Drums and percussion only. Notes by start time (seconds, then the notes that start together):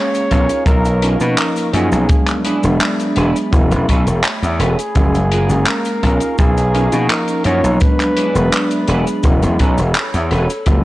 0.14 closed hi-hat, cabasa
0.31 kick, closed hi-hat
0.49 closed hi-hat, cabasa
0.66 kick, closed hi-hat, cabasa
0.85 closed hi-hat, cabasa
1.02 closed hi-hat
1.20 closed hi-hat, cabasa
1.38 clap, closed hi-hat, cabasa
1.56 closed hi-hat, cabasa
1.73 closed hi-hat
1.92 closed hi-hat, cabasa
2.09 kick, closed hi-hat, cabasa
2.27 clap, closed hi-hat, cabasa
2.45 closed hi-hat
2.64 closed hi-hat, cabasa
2.81 clap, closed hi-hat, cabasa
3.00 closed hi-hat, cabasa
3.16 closed hi-hat
3.36 closed hi-hat, cabasa
3.53 kick, closed hi-hat, cabasa
3.71 closed hi-hat, cabasa
3.89 kick, closed hi-hat
4.07 closed hi-hat, cabasa
4.24 clap, closed hi-hat, cabasa
4.43 closed hi-hat, cabasa
4.60 closed hi-hat
4.79 closed hi-hat, cabasa
4.95 kick, closed hi-hat, cabasa
5.15 closed hi-hat, cabasa
5.32 closed hi-hat
5.50 closed hi-hat, cabasa
5.66 clap, closed hi-hat, cabasa
5.85 closed hi-hat, cabasa
6.03 kick, closed hi-hat
6.20 closed hi-hat, cabasa
6.38 kick, closed hi-hat, cabasa
6.57 closed hi-hat, cabasa
6.75 closed hi-hat
6.92 closed hi-hat, cabasa
7.10 clap, closed hi-hat, cabasa
7.28 closed hi-hat, cabasa
7.44 closed hi-hat
7.64 closed hi-hat, cabasa
7.80 kick, closed hi-hat, cabasa
8.00 clap, closed hi-hat, cabasa
8.17 closed hi-hat
8.36 closed hi-hat, cabasa
8.52 clap, closed hi-hat, cabasa
8.71 closed hi-hat, cabasa
8.88 closed hi-hat
9.07 closed hi-hat, cabasa
9.23 kick, closed hi-hat, cabasa
9.43 closed hi-hat, cabasa
9.59 kick, closed hi-hat
9.78 closed hi-hat, cabasa
9.95 clap, closed hi-hat, cabasa
10.14 closed hi-hat, cabasa
10.31 closed hi-hat
10.50 closed hi-hat, cabasa
10.66 kick, closed hi-hat, cabasa